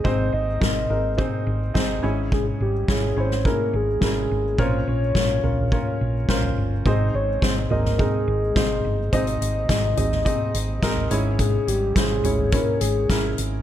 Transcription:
<<
  \new Staff \with { instrumentName = "Soft synth lead" } { \time 4/4 \key aes \major \tempo 4 = 106 c''8 ees''2 r4. | aes'8 g'8 aes'8 c''8 bes'8 aes'4. | c''8 des''2 r4. | ees''8 des''8 c''8 bes'8 aes'2 |
c''8 ees''2. r8 | aes'8 g'8 aes'4 bes'8 aes'4 r8 | }
  \new Staff \with { instrumentName = "Upright piano" } { \time 4/4 \key aes \major <c' ees' aes' c''>8. r16 <c' ees' aes' bes'>8 <c' ees' aes' bes'>8 <c' ees' aes' c''>8. r16 <c' ees' aes' c''>8 <des' fes' aes' des''>8~ | <des' fes' aes' des''>8 r8 <des' fes' aes' des''>8 <des' fes' aes' des''>8 <des' fes' aes' bes'>8. r16 <des' fes' aes' bes'>8. r16 | <des' f' bes' des''>8. r16 <des' f' bes' des''>8 <des' f' bes' des''>8 <des' f' bes' des''>8. r16 <des' f' bes' c''>8. r16 | <c' ees' aes' c''>8. r16 <c' ees' aes' c''>8 <c' ees' aes' ees''>8 <c' ees' aes' bes'>8. r16 <c' ees' aes' c''>8. r16 |
<c' ees' aes' ees''>8. r16 <c' ees' aes' ees''>8 <c' ees' aes' ees''>8 <c' ees' aes' ees''>8. r16 <c' ees' aes' bes'>8 <des' fes' aes' des''>8~ | <des' fes' aes' des''>8 r8 <des' fes' aes' c''>8 <des' fes' aes' des''>8 <des' fes' aes' des''>8. r16 <des' fes' aes' bes'>8. r16 | }
  \new Staff \with { instrumentName = "Upright piano" } { \clef bass \time 4/4 \key aes \major aes,4. r2 aes,8~ | aes,4 r2. | bes,4. r2 r8 | aes,4. r2 r8 |
aes,4. r2 aes,8~ | aes,4 r2. | }
  \new Staff \with { instrumentName = "Fingered electric bass" } { \clef bass \time 4/4 \key aes \major aes,,8 aes,,8 aes,,8 aes,,8. r16 aes,,8 aes,,8 aes,,8~ | aes,,8 aes,,8 aes,,8 aes,,8. r16 aes,,8 aes,,8 aes,,8 | bes,,8 bes,,8 r8 bes,,8. r16 bes,,8 bes,,8 g,,8 | aes,,8 aes,,8 aes,,8 aes,,8. r16 aes,,8 aes,,8 g,,8 |
aes,,8 aes,,8 aes,,8 aes,,8. r16 aes,,8 aes,,8 aes,,8~ | aes,,8 aes,,8 aes,,8 aes,,8. r16 aes,,8 aes,,8 aes,,8 | }
  \new DrumStaff \with { instrumentName = "Drums" } \drummode { \time 4/4 bd4 <bd sn>4 bd4 <bd sn>4 | bd4 <bd sn>8. sn16 bd4 <bd sn>4 | bd4 <bd sn>8 tomfh16 tomfh16 bd4 <bd sn>16 tomfh8. | bd4 <bd sn>8 tomfh16 <sn tomfh>16 bd4 <bd sn>4 |
<hh bd>16 hh16 hh8 <hh bd sn>8 <hh tomfh>16 <sn tomfh>16 <hh bd>8 hh8 <hh bd sn>16 tomfh16 hh8 | <hh bd>8 hh8 <hh bd sn>8 <hh tomfh>16 tomfh16 <hh bd>8 hh8 <hh bd sn>8 hh8 | }
>>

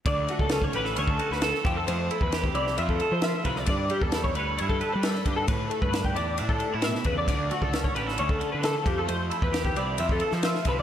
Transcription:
<<
  \new Staff \with { instrumentName = "Clean electric guitar" } { \time 4/4 \key d \major \tempo 4 = 133 d''8 fis'16 a'8 cis''16 b'8 cis''16 a'8 b'16 a'8 g'16 a'16 | c''8 a'16 b'8 g'16 d''8 e''16 a'8 c''16 e''8 b'16 d''16 | d''8 g'16 a'8 cis''16 b'8 cis''16 a'8 b'16 a'8 g'16 a'16 | b'8 a'16 b'8 g'16 d''8 e''16 a'8 cis''16 e''8 b'16 d''16 |
d''8 fis'16 a'8 cis''16 b'8 cis''16 a'8 b'16 a'8 g'16 a'16 | c''8 a'16 b'8 g'16 d''8 e''16 a'8 c''16 e''8 b'16 d''16 | }
  \new Staff \with { instrumentName = "Clean electric guitar" } { \time 4/4 \key d \major << { r4 cis'8 g'16 a'16 cis'8 fis'8 a'8 r8 | r8 e'8 g'8 e'8 f'8 a'8 f'8 r8 | r4 e'8 cis''8 e'8 b'4. | r4 d'8 g'8 d'8 d'16 e'4~ e'16 |
r4 cis'8 g'16 a'16 cis'4. r8 | r8 e'8 g'8 e'8 f'8 a'8 f'8 r8 | } \\ { d8 a2. f8 | a2.~ a8 f8 | g,8 g2. g,8 | a,8 a2~ a8 b,8 cis8 |
d8 a2 d8 e8 f8 | a2.~ a8 f8 | } >> }
  \new Staff \with { instrumentName = "Picked electric bass" } { \clef bass \time 4/4 \key d \major d,8 r16 cis,8. a,,8 d,8 r16 d,8 r16 f,8 | f,8 r16 e,8. c,8 f,8 r16 f8 r16 c,8 | g,8 r16 e,8. d,8 g,8 r16 g8 r16 g,8 | a,8 r16 g,8. e,8 a,8 r16 a,8 r16 e,8 |
d,8 r16 cis,8. a,,8 d,8 r16 d8 r16 f,8 | f,8 r16 e,8. c,8 f,8 r16 f8 r16 c,8 | }
  \new DrumStaff \with { instrumentName = "Drums" } \drummode { \time 4/4 <bd cymr>8 cymr16 bd16 <cymr sn>16 bd16 cymr16 sn16 cymr16 bd16 cymr16 sn16 <cymr sn>16 sn16 <bd cymr>8 | cymr8 cymr16 bd16 <cymr sn>16 bd16 cymr16 sn16 cymr16 bd16 cymr8 <cymr sn>8 <bd cymr>16 sn16 | <bd cymr>8 cymr16 bd16 <cymr sn>16 bd16 cymr8 cymr16 bd16 cymr8 <cymr sn>16 sn16 <bd cymr>8 | <bd cymr>8 cymr16 bd16 <cymr sn>16 bd16 cymr8 cymr16 bd16 cymr8 <cymr sn>16 sn16 <bd cymr>8 |
<bd cymr>8 cymr16 bd16 <cymr sn>16 bd16 cymr16 sn16 cymr16 bd16 cymr8 <cymr sn>8 <bd cymr>8 | cymr8 cymr16 bd16 <cymr sn>16 bd16 cymr8 cymr16 bd16 cymr16 sn16 <cymr sn>16 sn16 <bd cymr>8 | }
>>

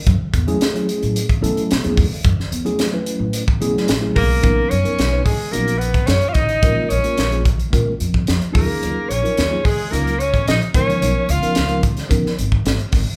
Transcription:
<<
  \new Staff \with { instrumentName = "Soprano saxophone" } { \time 4/4 \key ces \lydian \tempo 4 = 109 r1 | r2. r8 bes'8~ | bes'8 cis''4 aes'8 ais'8 b'8 cis''16. f''32 dis''8~ | dis''16. ees''32 des''4 r2 bes'8~ |
bes'8 des''4 aes'8 bes'8 des''8 ees''8 des''8~ | des''8 f''4 r2 r8 | }
  \new Staff \with { instrumentName = "Tine electric piano" } { \time 4/4 \key ces \lydian r8. <ges a des' fes' aes'>16 r16 <ges a des' fes' aes'>4 r16 <ges a des' fes' a'>8 r16 <ges a des' fes' aes'>16 r16 <fes' a'>16 | r8. <ges a des' fes' aes'>16 r16 <ges a des' fes' ces''>4 r16 <ges a des' fes' aes'>8 r16 <ges a des' fes' aes'>16 r16 <fes' aes'>16 | <fis b cis' dis' ais'>8 r16 <fis b cis' dis' ais'>16 r16 <fis b cis' dis' b'>16 <dis' cis''>16 r16 <fis b cis' dis' fis'>16 r16 <dis' ais'>16 r8. <dis' aes'>16 r16 | <aes bes des' f' bes'>8 r16 <aes bes des' f' bes'>16 r16 <aes bes des' f' aes'>16 r8 <aes bes des' f' bes'>16 r16 <f' bes'>16 r8. <ges des' ees' f' aes'>8~ |
<ges des' ees' f' aes'>8 r16 <ges des' ees' f' bes'>16 r16 <ges des' ees' f' aes'>16 <f' aes'>16 r16 <ges des' ees' f' bes'>16 r4 r16 <f ces' des' ees' bes'>8~ | <f ces' des' ees' bes'>8 r16 <f ces' des' ees' bes'>16 r16 <f ces' des' ees' bes'>16 <ees' bes'>16 r16 <f ces' des' ees' bes'>16 r16 <ees' bes'>16 r8. <ees' bes'>16 r16 | }
  \new Staff \with { instrumentName = "Tenor saxophone" } { \time 4/4 \key ces \lydian r1 | r2. r8 bes8~ | bes8 cis'4 aes8 ais8 b8 cis'16. f'32 dis'8~ | dis'16. ees'32 des'4 r2 bes8~ |
bes8 des'4 aes8 bes8 des'8 ees'8 des'8~ | des'8 f'4 r2 r8 | }
  \new Staff \with { instrumentName = "Upright bass" } { \clef bass \time 4/4 \key ces \lydian ges,16 r16 fes,8 r8. a,8 r16 ces16 r16 ces16 fes,16 fes,16 r16 | ges,16 r16 fes,8 r8. a,8 r16 ces16 r16 a,,8 ces,8 | b,,16 r16 fis,16 r16 b,,8 r8 ais,,4 fis,16 r16 a,,8 | bes,,16 r16 bes,,16 r16 bes,,4 bes,16 r16 f,8 f,16 r16 ees,16 r16 |
ees,16 r16 bes,,16 r16 ees,8 r8 des,4 bes,,16 r16 des,8 | ces,16 r16 des,16 r16 des,4 des16 r16 aes,,8 aes,,16 r16 aes,,16 r16 | }
  \new DrumStaff \with { instrumentName = "Drums" } \drummode { \time 4/4 <hh bd>8 <hh bd>16 hh16 <hh sn>16 hh16 hh16 hh16 hh16 <hh bd>16 hh16 hh16 <hh sn>16 hh16 <hho bd>8 | <hh bd>16 sn16 hh16 hh16 <hh sn>8 hh8 hh16 bd16 hh16 sn16 <hh sn>8 <hho bd>8 | <hh bd>8 hh16 hh16 <hh sn>8 <hho bd>8 hh16 hh16 hh16 <hh bd>16 <hh sn>16 hh16 <hh bd>16 hh16 | <hh bd>8 hh16 hh16 <hh sn>16 hh16 <hh bd>16 hh16 <hh bd>8 hh16 bd16 <hh sn>16 hh16 <hho bd>8 |
hh8 hh16 hh16 <hh sn>8 <hho bd>8 hh16 hh16 hh16 <hh bd>16 <hh sn>16 hh16 <hh bd>16 hh16 | hh8 hh16 hh16 <hh sn>16 hh16 <hh bd>16 <hh sn>16 <hh bd>16 sn16 hh16 bd16 <hh sn>16 hh16 <hho bd sn>8 | }
>>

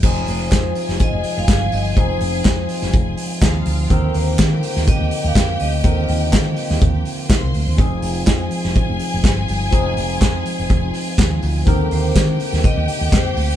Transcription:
<<
  \new Staff \with { instrumentName = "Vibraphone" } { \time 4/4 \key f \dorian \tempo 4 = 124 r8 c''4. ees''8. f''8. ees''8 | c''2 r2 | r8 c''4. ees''8. f''8. ees''8 | ees''2 r2 |
r1 | r1 | r8 c''4. ees''4 c''4 | }
  \new Staff \with { instrumentName = "String section" } { \time 4/4 \key f \dorian <aes' aes''>1~ | <aes' aes''>2. <f' f''>4 | <g' g''>1~ | <g' g''>2. <c'' c'''>4 |
<aes' aes''>1~ | <aes' aes''>1 | <g' g''>1 | }
  \new Staff \with { instrumentName = "Tine electric piano" } { \time 4/4 \key f \dorian <f c' ees' aes'>1 | <f c' ees' aes'>2. <f c' ees' aes'>4 | <d ees c' bes'>1 | <d ees c' bes'>1 |
<f c' ees' aes'>1 | <f c' ees' aes'>1 | <d ees c' bes'>1 | }
  \new Staff \with { instrumentName = "Tonewheel organ" } { \time 4/4 \key f \dorian f'1 | f'1~ | f'1 | f'1 |
r1 | r1 | g'1 | }
  \new Staff \with { instrumentName = "Tonewheel organ" } { \time 4/4 \key f \dorian << { <f c'>1~ | <f c'>1~ | <f c'>1~ | <f c'>1~ |
<f c'>1~ | <f c'>1 | <c c'>1 | } \\ { aes1~ | aes1 | bes1~ | bes1 |
aes1~ | aes1 | bes1 | } >> }
  \new Staff \with { instrumentName = "Fingered electric bass" } { \clef bass \time 4/4 \key f \dorian f,,8 f,,8 f,8 r16 f,,16 r16 f,,16 r16 f,,16 g,,8 g,,8 | f,,8 f,,8 f,8 r16 f,,16 f,,8 r8 ees,8 d,8 | ees,8 ees,8 ees8 r16 ees,16 r16 ees,16 r16 ees,16 f,8 d,8 | ees,8 ees,8 ees8 r16 ees,16 ees,8 r8. c,16 d,16 ees,16 |
f,,8 f,,8 f,8 r16 f,,16 r16 f,,16 r16 f,,16 g,,8 g,,8 | f,,8 f,,8 f,8 r16 f,,16 f,,8 r8 ees,8 d,8 | ees,8 ees,8 ees8 r16 ees,16 r16 ees,16 r16 ees,16 f,8 d,8 | }
  \new DrumStaff \with { instrumentName = "Drums" } \drummode { \time 4/4 <cymc bd>8 hho8 <hc hh bd sn>8 hho16 sn16 <hh bd>8 hho8 <hc hh bd sn>8 hho8 | <hh bd>8 hho8 <hc hh bd sn>8 hho16 sn16 <hh bd>8 hho8 <hc hh bd sn>8 hho8 | <hh bd>8 hho8 <hc hh bd sn>8 hho16 sn16 <hh bd>8 hho8 <hc hh bd sn>8 hho8 | <hh bd>8 hho8 <hc hh bd sn>8 hho16 sn16 <hh bd>8 hho8 <hc hh bd sn>8 hho8 |
<hh bd>8 hho8 <hc hh bd sn>8 hho16 sn16 <hh bd>8 hho8 <hc hh bd sn>8 hho8 | <hh bd>8 hho8 <hc hh bd sn>8 hho8 <hh bd>8 hho8 <hc hh bd sn>8 hho8 | <hh bd>8 hho8 <hc hh bd sn>8 hho16 sn16 <hh bd>8 hho8 <hc hh bd sn>8 hho8 | }
>>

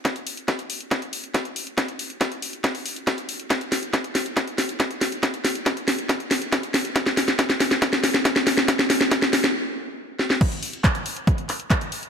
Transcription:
\new DrumStaff \with { instrumentName = "Drums" } \drummode { \time 4/4 \tempo 4 = 139 <hh bd sn>16 hh16 hho16 hh16 <hh bd sn>16 hh16 hho16 hh16 <hh bd sn>16 hh16 hho16 hh16 <hh bd sn>16 hh16 hho16 hh16 | <hh bd sn>16 hh16 hho16 hh16 <hh bd sn>16 hh16 hho16 hh16 <hh bd sn>16 hho16 hho16 hh16 <hh bd sn>16 hh16 hho16 hh16 | <hh bd sn>16 hh16 <hho sn>16 hh16 <hh bd sn>16 hh16 <hho sn>16 hh16 <hh bd sn>16 hh16 <hho sn>16 hh16 <hh bd sn>16 hh16 <hho sn>16 hh16 | <hh bd sn>16 hh16 <hho sn>16 hh16 <hh bd sn>16 hh16 <hho sn>16 hh16 <hh bd sn>16 hh16 <hho sn>16 hh16 <hh bd sn>16 hh16 <hho sn>16 hh16 |
<hh bd sn>16 <hh sn>16 <hho sn>16 <hh sn>16 <hh bd sn>16 <hh sn>16 <hho sn>16 <hh sn>16 <hh bd sn>16 <hh sn>16 <hho sn>16 <hh sn>16 <hh bd sn>16 <hh sn>16 <hho sn>16 <hh sn>16 | <hh bd sn>16 <hh sn>16 <hho sn>16 <hh sn>16 <hh bd sn>16 <hh sn>16 <hho sn>16 <hh sn>16 r4 r8 sn16 sn16 | <cymc hh bd>16 hh16 hho16 hh16 <hc hh bd>16 hh16 hho16 hh16 <hh bd>16 hh16 <hc hho>16 hh16 <hc hh bd>16 hh16 hho16 hh16 | }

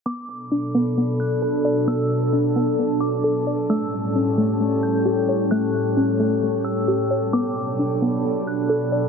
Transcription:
<<
  \new Staff \with { instrumentName = "Synth bell" } { \time 4/4 \key b \minor \tempo 4 = 132 d'''2~ d'''8 fis'''4. | e'''2~ e'''8 d'''4. | e'''2~ e'''8 g'''4. | fis'''2~ fis'''8 e'''4. |
d'''2~ d'''8 fis'''4. | }
  \new Staff \with { instrumentName = "Synth texture" } { \time 4/4 \key b \minor << { b''1 | a''1~ | a''1 | g''1 |
b''1 | } \\ { <a' d''>1~ | <a' d''>1 | <g' cis''>1~ | <g' cis''>1 |
<a' d''>1 | } >> }
  \new Staff \with { instrumentName = "Synth pluck" } { \time 4/4 \key b \minor b4 d'8 b8 b4 a'8 d''8 | b4 d'8 b8 b4 a'8 d''8 | a4 cis'8 a8 a4 g'8 cis''8 | a4 cis'8 a8 a4 g'8 cis''8 |
b4 d'8 b8 b4 a'8 d''8 | }
  \new Staff \with { instrumentName = "Ambient pad" } { \clef bass \time 4/4 \key b \minor << { a'1~ | a'1 | a'1~ | a'1~ |
a'1 | } \\ { <b, fis d'>1~ | <b, fis d'>1 | <a, g cis'>1~ | <a, g cis'>1 |
<b, fis d'>1 | } >> }
>>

